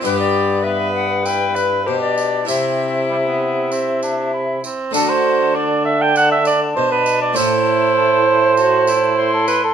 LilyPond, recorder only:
\new Staff \with { instrumentName = "Recorder" } { \time 4/4 \key d \mixolydian \tempo 4 = 99 b'16 d''8. e''8 fis''8 g''8 b'8 c''16 d''8. | e''2.~ e''8 r8 | a''1~ | a''4 a''4 a''4 c'''4 | }